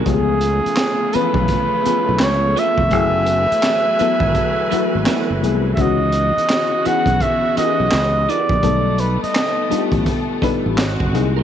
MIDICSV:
0, 0, Header, 1, 9, 480
1, 0, Start_track
1, 0, Key_signature, 4, "minor"
1, 0, Tempo, 714286
1, 41, Time_signature, 4, 2, 24, 8
1, 7681, End_track
2, 0, Start_track
2, 0, Title_t, "Flugelhorn"
2, 0, Program_c, 0, 56
2, 50, Note_on_c, 0, 68, 96
2, 768, Note_on_c, 0, 71, 106
2, 778, Note_off_c, 0, 68, 0
2, 1499, Note_on_c, 0, 73, 103
2, 1509, Note_off_c, 0, 71, 0
2, 1741, Note_on_c, 0, 76, 117
2, 1751, Note_off_c, 0, 73, 0
2, 3651, Note_off_c, 0, 76, 0
2, 3861, Note_on_c, 0, 76, 78
2, 3907, Note_on_c, 0, 75, 105
2, 3917, Note_off_c, 0, 76, 0
2, 4617, Note_on_c, 0, 78, 98
2, 4627, Note_off_c, 0, 75, 0
2, 4853, Note_on_c, 0, 76, 111
2, 4863, Note_off_c, 0, 78, 0
2, 5087, Note_off_c, 0, 76, 0
2, 5094, Note_on_c, 0, 75, 104
2, 5578, Note_on_c, 0, 74, 97
2, 5588, Note_off_c, 0, 75, 0
2, 6049, Note_on_c, 0, 71, 82
2, 6059, Note_off_c, 0, 74, 0
2, 6196, Note_off_c, 0, 71, 0
2, 6201, Note_on_c, 0, 75, 84
2, 6649, Note_off_c, 0, 75, 0
2, 7681, End_track
3, 0, Start_track
3, 0, Title_t, "Clean electric guitar"
3, 0, Program_c, 1, 27
3, 766, Note_on_c, 1, 59, 64
3, 773, Note_on_c, 1, 65, 74
3, 777, Note_on_c, 1, 69, 74
3, 897, Note_off_c, 1, 59, 0
3, 900, Note_off_c, 1, 65, 0
3, 902, Note_off_c, 1, 69, 0
3, 1250, Note_on_c, 1, 59, 83
3, 1253, Note_on_c, 1, 65, 77
3, 1258, Note_on_c, 1, 69, 84
3, 1408, Note_off_c, 1, 59, 0
3, 1409, Note_off_c, 1, 65, 0
3, 1412, Note_off_c, 1, 69, 0
3, 1723, Note_on_c, 1, 59, 84
3, 1725, Note_on_c, 1, 65, 101
3, 1734, Note_on_c, 1, 69, 94
3, 1884, Note_off_c, 1, 59, 0
3, 1885, Note_off_c, 1, 65, 0
3, 1890, Note_off_c, 1, 69, 0
3, 2685, Note_on_c, 1, 59, 65
3, 2689, Note_on_c, 1, 64, 69
3, 2696, Note_on_c, 1, 69, 80
3, 2816, Note_off_c, 1, 59, 0
3, 2819, Note_off_c, 1, 64, 0
3, 2822, Note_off_c, 1, 69, 0
3, 3166, Note_on_c, 1, 59, 74
3, 3173, Note_on_c, 1, 64, 75
3, 3176, Note_on_c, 1, 69, 83
3, 3326, Note_off_c, 1, 59, 0
3, 3329, Note_off_c, 1, 64, 0
3, 3331, Note_off_c, 1, 69, 0
3, 3409, Note_on_c, 1, 59, 86
3, 3418, Note_on_c, 1, 64, 84
3, 3422, Note_on_c, 1, 69, 94
3, 3567, Note_off_c, 1, 59, 0
3, 3572, Note_off_c, 1, 64, 0
3, 3574, Note_off_c, 1, 69, 0
3, 4605, Note_on_c, 1, 64, 58
3, 4608, Note_on_c, 1, 66, 66
3, 4614, Note_on_c, 1, 71, 65
3, 4737, Note_off_c, 1, 64, 0
3, 4738, Note_off_c, 1, 66, 0
3, 4741, Note_off_c, 1, 71, 0
3, 5089, Note_on_c, 1, 64, 75
3, 5095, Note_on_c, 1, 66, 80
3, 5102, Note_on_c, 1, 71, 97
3, 5247, Note_off_c, 1, 64, 0
3, 5250, Note_off_c, 1, 66, 0
3, 5253, Note_off_c, 1, 71, 0
3, 5570, Note_on_c, 1, 64, 91
3, 5577, Note_on_c, 1, 66, 85
3, 5582, Note_on_c, 1, 71, 86
3, 5728, Note_off_c, 1, 64, 0
3, 5731, Note_off_c, 1, 66, 0
3, 5734, Note_off_c, 1, 71, 0
3, 6524, Note_on_c, 1, 63, 63
3, 6534, Note_on_c, 1, 69, 66
3, 6540, Note_on_c, 1, 71, 71
3, 6656, Note_off_c, 1, 63, 0
3, 6661, Note_off_c, 1, 69, 0
3, 6664, Note_off_c, 1, 71, 0
3, 7006, Note_on_c, 1, 63, 85
3, 7010, Note_on_c, 1, 69, 91
3, 7016, Note_on_c, 1, 71, 86
3, 7166, Note_off_c, 1, 63, 0
3, 7168, Note_off_c, 1, 69, 0
3, 7171, Note_off_c, 1, 71, 0
3, 7638, Note_on_c, 1, 70, 65
3, 7647, Note_on_c, 1, 66, 58
3, 7652, Note_on_c, 1, 60, 54
3, 7681, Note_off_c, 1, 60, 0
3, 7681, Note_off_c, 1, 66, 0
3, 7681, Note_off_c, 1, 70, 0
3, 7681, End_track
4, 0, Start_track
4, 0, Title_t, "FM electric piano"
4, 0, Program_c, 2, 5
4, 0, Control_c, 2, 64, 127
4, 45, Note_on_c, 2, 57, 81
4, 46, Note_on_c, 2, 53, 97
4, 48, Note_on_c, 2, 59, 82
4, 49, Control_c, 2, 64, 0
4, 51, Note_on_c, 2, 61, 85
4, 55, Note_on_c, 2, 67, 81
4, 98, Note_on_c, 2, 68, 100
4, 102, Note_off_c, 2, 67, 0
4, 171, Control_c, 2, 64, 127
4, 677, Note_off_c, 2, 57, 0
4, 678, Note_off_c, 2, 53, 0
4, 679, Note_off_c, 2, 59, 0
4, 680, Note_off_c, 2, 61, 0
4, 704, Note_off_c, 2, 68, 0
4, 770, Note_on_c, 2, 52, 64
4, 771, Note_on_c, 2, 57, 78
4, 774, Note_on_c, 2, 59, 69
4, 778, Note_on_c, 2, 61, 74
4, 780, Note_on_c, 2, 71, 86
4, 808, Note_on_c, 2, 53, 84
4, 820, Note_off_c, 2, 52, 0
4, 1189, Note_off_c, 2, 57, 0
4, 1190, Note_off_c, 2, 59, 0
4, 1192, Note_off_c, 2, 61, 0
4, 1193, Note_off_c, 2, 71, 0
4, 1207, Note_off_c, 2, 53, 0
4, 1245, Note_on_c, 2, 53, 68
4, 1247, Note_on_c, 2, 57, 61
4, 1249, Note_on_c, 2, 59, 60
4, 1253, Note_on_c, 2, 61, 60
4, 1255, Note_on_c, 2, 68, 80
4, 1877, Note_off_c, 2, 53, 0
4, 1878, Note_off_c, 2, 57, 0
4, 1879, Note_off_c, 2, 59, 0
4, 1881, Note_off_c, 2, 61, 0
4, 1882, Note_off_c, 2, 68, 0
4, 1962, Note_on_c, 2, 54, 97
4, 1966, Note_on_c, 2, 57, 83
4, 1968, Control_c, 2, 64, 0
4, 1968, Note_on_c, 2, 59, 81
4, 1970, Note_on_c, 2, 64, 82
4, 1972, Note_on_c, 2, 68, 108
4, 2096, Control_c, 2, 64, 127
4, 2596, Note_off_c, 2, 54, 0
4, 2598, Note_off_c, 2, 57, 0
4, 2599, Note_off_c, 2, 59, 0
4, 2599, Note_off_c, 2, 64, 0
4, 2601, Note_off_c, 2, 68, 0
4, 2685, Note_on_c, 2, 54, 100
4, 2688, Note_on_c, 2, 57, 80
4, 2690, Note_on_c, 2, 59, 89
4, 2695, Note_on_c, 2, 64, 91
4, 2698, Note_on_c, 2, 69, 104
4, 3106, Note_off_c, 2, 54, 0
4, 3107, Note_off_c, 2, 57, 0
4, 3108, Note_off_c, 2, 59, 0
4, 3111, Note_off_c, 2, 64, 0
4, 3112, Note_off_c, 2, 69, 0
4, 3168, Note_on_c, 2, 54, 86
4, 3168, Note_on_c, 2, 57, 78
4, 3172, Note_on_c, 2, 59, 82
4, 3174, Note_on_c, 2, 64, 76
4, 3176, Note_on_c, 2, 66, 99
4, 3587, Note_off_c, 2, 54, 0
4, 3587, Note_off_c, 2, 57, 0
4, 3589, Note_off_c, 2, 59, 0
4, 3590, Note_off_c, 2, 64, 0
4, 3591, Note_off_c, 2, 66, 0
4, 3641, Note_on_c, 2, 54, 75
4, 3645, Note_on_c, 2, 57, 69
4, 3649, Note_on_c, 2, 59, 70
4, 3649, Note_on_c, 2, 64, 70
4, 3656, Note_on_c, 2, 68, 83
4, 3852, Note_off_c, 2, 54, 0
4, 3854, Note_off_c, 2, 57, 0
4, 3856, Note_off_c, 2, 59, 0
4, 3856, Note_off_c, 2, 64, 0
4, 3860, Note_off_c, 2, 68, 0
4, 3883, Note_on_c, 2, 52, 84
4, 3886, Note_on_c, 2, 59, 83
4, 3889, Control_c, 2, 64, 0
4, 3890, Note_on_c, 2, 61, 77
4, 3895, Note_on_c, 2, 63, 77
4, 3895, Note_on_c, 2, 66, 98
4, 4007, Control_c, 2, 64, 127
4, 4516, Note_off_c, 2, 52, 0
4, 4518, Note_off_c, 2, 59, 0
4, 4520, Note_off_c, 2, 61, 0
4, 4522, Note_off_c, 2, 63, 0
4, 4522, Note_off_c, 2, 66, 0
4, 4606, Note_on_c, 2, 52, 81
4, 4611, Note_on_c, 2, 59, 73
4, 4612, Note_on_c, 2, 61, 69
4, 4615, Note_on_c, 2, 63, 71
4, 4618, Note_on_c, 2, 68, 87
4, 5026, Note_off_c, 2, 52, 0
4, 5029, Note_off_c, 2, 59, 0
4, 5029, Note_off_c, 2, 61, 0
4, 5031, Note_off_c, 2, 63, 0
4, 5032, Note_off_c, 2, 68, 0
4, 5083, Note_on_c, 2, 52, 65
4, 5085, Note_on_c, 2, 59, 62
4, 5088, Note_on_c, 2, 61, 60
4, 5093, Note_on_c, 2, 63, 59
4, 5097, Note_on_c, 2, 67, 61
4, 5139, Note_on_c, 2, 68, 73
4, 5144, Note_off_c, 2, 67, 0
4, 5716, Note_off_c, 2, 52, 0
4, 5717, Note_off_c, 2, 59, 0
4, 5719, Note_off_c, 2, 61, 0
4, 5721, Note_off_c, 2, 63, 0
4, 5744, Note_off_c, 2, 68, 0
4, 5797, Note_on_c, 2, 55, 92
4, 5802, Note_on_c, 2, 57, 81
4, 5802, Note_on_c, 2, 59, 81
4, 5807, Note_on_c, 2, 63, 81
4, 5808, Note_on_c, 2, 69, 111
4, 5810, Control_c, 2, 64, 0
4, 5921, Control_c, 2, 64, 127
4, 6433, Note_off_c, 2, 55, 0
4, 6435, Note_off_c, 2, 59, 0
4, 6436, Note_off_c, 2, 57, 0
4, 6438, Note_off_c, 2, 63, 0
4, 6439, Note_off_c, 2, 69, 0
4, 6516, Note_on_c, 2, 55, 78
4, 6521, Note_on_c, 2, 59, 74
4, 6523, Note_on_c, 2, 62, 74
4, 6525, Note_on_c, 2, 63, 72
4, 6528, Note_on_c, 2, 65, 73
4, 6574, Note_on_c, 2, 67, 86
4, 6579, Note_off_c, 2, 65, 0
4, 6941, Note_off_c, 2, 55, 0
4, 6944, Note_off_c, 2, 59, 0
4, 6945, Note_off_c, 2, 62, 0
4, 6945, Note_off_c, 2, 63, 0
4, 6970, Note_off_c, 2, 67, 0
4, 7005, Note_on_c, 2, 55, 95
4, 7007, Note_on_c, 2, 62, 84
4, 7009, Note_on_c, 2, 59, 79
4, 7013, Note_on_c, 2, 63, 84
4, 7016, Note_on_c, 2, 71, 99
4, 7243, Note_off_c, 2, 55, 0
4, 7244, Note_off_c, 2, 62, 0
4, 7245, Note_off_c, 2, 59, 0
4, 7247, Note_off_c, 2, 63, 0
4, 7248, Note_off_c, 2, 71, 0
4, 7250, Control_c, 2, 64, 0
4, 7355, Control_c, 2, 64, 127
4, 7483, Note_on_c, 2, 54, 75
4, 7486, Note_on_c, 2, 58, 70
4, 7488, Note_on_c, 2, 60, 69
4, 7492, Note_on_c, 2, 63, 69
4, 7493, Note_on_c, 2, 68, 84
4, 7681, Note_off_c, 2, 54, 0
4, 7681, Note_off_c, 2, 58, 0
4, 7681, Note_off_c, 2, 60, 0
4, 7681, Note_off_c, 2, 63, 0
4, 7681, Note_off_c, 2, 68, 0
4, 7681, End_track
5, 0, Start_track
5, 0, Title_t, "String section"
5, 0, Program_c, 3, 48
5, 40, Note_on_c, 3, 49, 74
5, 42, Note_on_c, 3, 57, 81
5, 44, Note_on_c, 3, 65, 63
5, 46, Note_on_c, 3, 59, 66
5, 1941, Note_off_c, 3, 49, 0
5, 1943, Note_off_c, 3, 65, 0
5, 1944, Note_off_c, 3, 59, 0
5, 1960, Note_on_c, 3, 80, 61
5, 1961, Note_on_c, 3, 52, 71
5, 1962, Note_on_c, 3, 54, 72
5, 1965, Note_on_c, 3, 71, 75
5, 3854, Note_off_c, 3, 57, 0
5, 3861, Note_off_c, 3, 80, 0
5, 3862, Note_off_c, 3, 54, 0
5, 3864, Note_off_c, 3, 71, 0
5, 3886, Note_on_c, 3, 49, 65
5, 3887, Note_on_c, 3, 59, 61
5, 3887, Note_on_c, 3, 66, 75
5, 5774, Note_off_c, 3, 52, 0
5, 5784, Note_off_c, 3, 49, 0
5, 5784, Note_off_c, 3, 66, 0
5, 5785, Note_off_c, 3, 59, 0
5, 5795, Note_on_c, 3, 57, 72
5, 5802, Note_on_c, 3, 59, 65
5, 7223, Note_off_c, 3, 57, 0
5, 7227, Note_off_c, 3, 59, 0
5, 7238, Note_on_c, 3, 60, 64
5, 7240, Note_on_c, 3, 56, 74
5, 7240, Note_on_c, 3, 66, 77
5, 7681, Note_off_c, 3, 56, 0
5, 7681, Note_off_c, 3, 60, 0
5, 7681, Note_off_c, 3, 66, 0
5, 7681, End_track
6, 0, Start_track
6, 0, Title_t, "Fingered electric bass"
6, 0, Program_c, 4, 33
6, 48, Note_on_c, 4, 37, 90
6, 408, Note_off_c, 4, 37, 0
6, 909, Note_on_c, 4, 35, 93
6, 992, Note_off_c, 4, 35, 0
6, 1402, Note_on_c, 4, 35, 90
6, 1493, Note_off_c, 4, 35, 0
6, 1493, Note_on_c, 4, 37, 99
6, 1707, Note_off_c, 4, 37, 0
6, 1873, Note_on_c, 4, 29, 86
6, 1964, Note_off_c, 4, 29, 0
6, 1964, Note_on_c, 4, 30, 100
6, 2326, Note_off_c, 4, 30, 0
6, 2830, Note_on_c, 4, 32, 86
6, 2912, Note_off_c, 4, 32, 0
6, 3326, Note_on_c, 4, 32, 80
6, 3401, Note_off_c, 4, 32, 0
6, 3563, Note_on_c, 4, 30, 87
6, 3640, Note_off_c, 4, 30, 0
6, 3651, Note_on_c, 4, 36, 84
6, 3866, Note_off_c, 4, 36, 0
6, 3886, Note_on_c, 4, 37, 96
6, 4247, Note_off_c, 4, 37, 0
6, 4749, Note_on_c, 4, 35, 92
6, 4832, Note_off_c, 4, 35, 0
6, 5241, Note_on_c, 4, 35, 84
6, 5318, Note_off_c, 4, 35, 0
6, 5330, Note_on_c, 4, 37, 102
6, 5545, Note_off_c, 4, 37, 0
6, 5713, Note_on_c, 4, 34, 92
6, 5794, Note_off_c, 4, 34, 0
6, 5807, Note_on_c, 4, 35, 98
6, 6167, Note_off_c, 4, 35, 0
6, 6672, Note_on_c, 4, 33, 101
6, 6753, Note_off_c, 4, 33, 0
6, 7163, Note_on_c, 4, 33, 82
6, 7258, Note_off_c, 4, 33, 0
6, 7258, Note_on_c, 4, 32, 100
6, 7387, Note_off_c, 4, 32, 0
6, 7398, Note_on_c, 4, 30, 92
6, 7496, Note_off_c, 4, 30, 0
6, 7496, Note_on_c, 4, 36, 82
6, 7681, Note_off_c, 4, 36, 0
6, 7681, End_track
7, 0, Start_track
7, 0, Title_t, "Muted clean electric guitar strokes"
7, 1015, Note_on_c, 9, 29, 38
7, 1082, Note_off_c, 9, 29, 0
7, 1491, Note_on_c, 9, 29, 41
7, 1559, Note_off_c, 9, 29, 0
7, 2924, Note_on_c, 9, 29, 44
7, 2991, Note_off_c, 9, 29, 0
7, 4853, Note_on_c, 9, 29, 36
7, 4921, Note_off_c, 9, 29, 0
7, 5335, Note_on_c, 9, 29, 50
7, 5402, Note_off_c, 9, 29, 0
7, 6768, Note_on_c, 9, 29, 45
7, 6835, Note_off_c, 9, 29, 0
7, 7681, End_track
8, 0, Start_track
8, 0, Title_t, "Muted fingered electric bass strokes"
8, 443, Note_on_c, 9, 29, 44
8, 511, Note_off_c, 9, 29, 0
8, 774, Note_on_c, 9, 29, 47
8, 841, Note_off_c, 9, 29, 0
8, 1252, Note_on_c, 9, 29, 50
8, 1319, Note_off_c, 9, 29, 0
8, 2365, Note_on_c, 9, 29, 43
8, 2432, Note_off_c, 9, 29, 0
8, 2692, Note_on_c, 9, 29, 45
8, 2759, Note_off_c, 9, 29, 0
8, 3176, Note_on_c, 9, 29, 49
8, 3243, Note_off_c, 9, 29, 0
8, 4282, Note_on_c, 9, 29, 47
8, 4349, Note_off_c, 9, 29, 0
8, 4612, Note_on_c, 9, 29, 45
8, 4679, Note_off_c, 9, 29, 0
8, 5092, Note_on_c, 9, 29, 49
8, 5159, Note_off_c, 9, 29, 0
8, 6206, Note_on_c, 9, 29, 46
8, 6273, Note_off_c, 9, 29, 0
8, 6532, Note_on_c, 9, 29, 46
8, 6599, Note_off_c, 9, 29, 0
8, 7009, Note_on_c, 9, 29, 48
8, 7076, Note_off_c, 9, 29, 0
8, 7681, End_track
9, 0, Start_track
9, 0, Title_t, "Drums"
9, 40, Note_on_c, 9, 36, 99
9, 40, Note_on_c, 9, 42, 78
9, 107, Note_off_c, 9, 42, 0
9, 108, Note_off_c, 9, 36, 0
9, 275, Note_on_c, 9, 42, 71
9, 342, Note_off_c, 9, 42, 0
9, 445, Note_on_c, 9, 42, 48
9, 510, Note_off_c, 9, 42, 0
9, 510, Note_on_c, 9, 42, 69
9, 514, Note_on_c, 9, 39, 73
9, 518, Note_on_c, 9, 38, 102
9, 577, Note_off_c, 9, 42, 0
9, 582, Note_off_c, 9, 39, 0
9, 586, Note_off_c, 9, 38, 0
9, 759, Note_on_c, 9, 42, 60
9, 826, Note_off_c, 9, 42, 0
9, 902, Note_on_c, 9, 36, 98
9, 969, Note_off_c, 9, 36, 0
9, 995, Note_on_c, 9, 42, 64
9, 1000, Note_on_c, 9, 36, 92
9, 1062, Note_off_c, 9, 42, 0
9, 1067, Note_off_c, 9, 36, 0
9, 1246, Note_on_c, 9, 42, 67
9, 1313, Note_off_c, 9, 42, 0
9, 1474, Note_on_c, 9, 39, 93
9, 1478, Note_on_c, 9, 38, 114
9, 1483, Note_on_c, 9, 42, 78
9, 1541, Note_off_c, 9, 39, 0
9, 1545, Note_off_c, 9, 38, 0
9, 1550, Note_off_c, 9, 42, 0
9, 1728, Note_on_c, 9, 42, 58
9, 1795, Note_off_c, 9, 42, 0
9, 1865, Note_on_c, 9, 36, 99
9, 1933, Note_off_c, 9, 36, 0
9, 1953, Note_on_c, 9, 42, 68
9, 1958, Note_on_c, 9, 36, 105
9, 2020, Note_off_c, 9, 42, 0
9, 2025, Note_off_c, 9, 36, 0
9, 2193, Note_on_c, 9, 42, 70
9, 2260, Note_off_c, 9, 42, 0
9, 2364, Note_on_c, 9, 42, 51
9, 2432, Note_off_c, 9, 42, 0
9, 2433, Note_on_c, 9, 42, 77
9, 2438, Note_on_c, 9, 39, 77
9, 2442, Note_on_c, 9, 38, 94
9, 2500, Note_off_c, 9, 42, 0
9, 2505, Note_off_c, 9, 39, 0
9, 2509, Note_off_c, 9, 38, 0
9, 2682, Note_on_c, 9, 42, 57
9, 2749, Note_off_c, 9, 42, 0
9, 2824, Note_on_c, 9, 36, 110
9, 2891, Note_off_c, 9, 36, 0
9, 2921, Note_on_c, 9, 42, 68
9, 2923, Note_on_c, 9, 36, 103
9, 2988, Note_off_c, 9, 42, 0
9, 2990, Note_off_c, 9, 36, 0
9, 3170, Note_on_c, 9, 42, 66
9, 3237, Note_off_c, 9, 42, 0
9, 3400, Note_on_c, 9, 39, 90
9, 3404, Note_on_c, 9, 38, 114
9, 3409, Note_on_c, 9, 42, 88
9, 3467, Note_off_c, 9, 39, 0
9, 3471, Note_off_c, 9, 38, 0
9, 3476, Note_off_c, 9, 42, 0
9, 3654, Note_on_c, 9, 42, 56
9, 3721, Note_off_c, 9, 42, 0
9, 3877, Note_on_c, 9, 42, 71
9, 3879, Note_on_c, 9, 36, 105
9, 3944, Note_off_c, 9, 42, 0
9, 3946, Note_off_c, 9, 36, 0
9, 4114, Note_on_c, 9, 42, 71
9, 4182, Note_off_c, 9, 42, 0
9, 4288, Note_on_c, 9, 42, 48
9, 4356, Note_off_c, 9, 42, 0
9, 4359, Note_on_c, 9, 42, 74
9, 4364, Note_on_c, 9, 39, 81
9, 4368, Note_on_c, 9, 38, 105
9, 4426, Note_off_c, 9, 42, 0
9, 4431, Note_off_c, 9, 39, 0
9, 4435, Note_off_c, 9, 38, 0
9, 4606, Note_on_c, 9, 42, 63
9, 4673, Note_off_c, 9, 42, 0
9, 4743, Note_on_c, 9, 36, 100
9, 4748, Note_on_c, 9, 42, 52
9, 4810, Note_off_c, 9, 36, 0
9, 4815, Note_off_c, 9, 42, 0
9, 4840, Note_on_c, 9, 42, 67
9, 4842, Note_on_c, 9, 36, 98
9, 4908, Note_off_c, 9, 42, 0
9, 4909, Note_off_c, 9, 36, 0
9, 5087, Note_on_c, 9, 42, 72
9, 5155, Note_off_c, 9, 42, 0
9, 5316, Note_on_c, 9, 39, 89
9, 5320, Note_on_c, 9, 38, 104
9, 5325, Note_on_c, 9, 42, 88
9, 5383, Note_off_c, 9, 39, 0
9, 5387, Note_off_c, 9, 38, 0
9, 5392, Note_off_c, 9, 42, 0
9, 5573, Note_on_c, 9, 42, 54
9, 5640, Note_off_c, 9, 42, 0
9, 5708, Note_on_c, 9, 36, 100
9, 5775, Note_off_c, 9, 36, 0
9, 5798, Note_on_c, 9, 42, 73
9, 5800, Note_on_c, 9, 36, 106
9, 5866, Note_off_c, 9, 42, 0
9, 5867, Note_off_c, 9, 36, 0
9, 6036, Note_on_c, 9, 42, 64
9, 6103, Note_off_c, 9, 42, 0
9, 6207, Note_on_c, 9, 42, 49
9, 6274, Note_off_c, 9, 42, 0
9, 6280, Note_on_c, 9, 42, 76
9, 6285, Note_on_c, 9, 39, 77
9, 6289, Note_on_c, 9, 38, 97
9, 6347, Note_off_c, 9, 42, 0
9, 6352, Note_off_c, 9, 39, 0
9, 6356, Note_off_c, 9, 38, 0
9, 6529, Note_on_c, 9, 42, 65
9, 6596, Note_off_c, 9, 42, 0
9, 6664, Note_on_c, 9, 36, 102
9, 6667, Note_on_c, 9, 42, 52
9, 6731, Note_off_c, 9, 36, 0
9, 6735, Note_off_c, 9, 42, 0
9, 6761, Note_on_c, 9, 42, 71
9, 6763, Note_on_c, 9, 36, 100
9, 6828, Note_off_c, 9, 42, 0
9, 6830, Note_off_c, 9, 36, 0
9, 7002, Note_on_c, 9, 36, 92
9, 7010, Note_on_c, 9, 42, 73
9, 7070, Note_off_c, 9, 36, 0
9, 7077, Note_off_c, 9, 42, 0
9, 7242, Note_on_c, 9, 39, 87
9, 7246, Note_on_c, 9, 38, 116
9, 7251, Note_on_c, 9, 42, 81
9, 7309, Note_off_c, 9, 39, 0
9, 7313, Note_off_c, 9, 38, 0
9, 7318, Note_off_c, 9, 42, 0
9, 7393, Note_on_c, 9, 36, 102
9, 7460, Note_off_c, 9, 36, 0
9, 7491, Note_on_c, 9, 42, 61
9, 7558, Note_off_c, 9, 42, 0
9, 7681, End_track
0, 0, End_of_file